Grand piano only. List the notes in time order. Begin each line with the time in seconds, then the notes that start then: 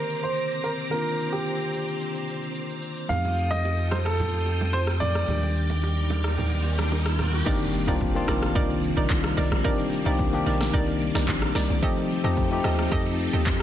Already playing: A#4
0.23 C5
0.64 A#4
0.91 A#4
1.32 G4
3.09 F5
3.51 D#5
3.91 C5
4.05 A4
4.73 C5
5.00 D5